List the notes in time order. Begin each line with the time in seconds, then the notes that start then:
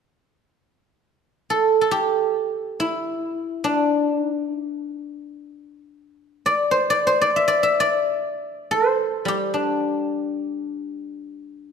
1.50 A4
1.81 A4
1.91 G4
2.80 E4
3.64 D4
4.18 D#4
4.33 D4
4.49 D#4
4.63 D4
6.46 D5
6.71 C5
6.90 D5
7.07 C5
7.21 D5
7.36 E5
7.48 D5
7.63 E5
7.80 D5
8.71 C5
9.25 G3 G4
9.54 D4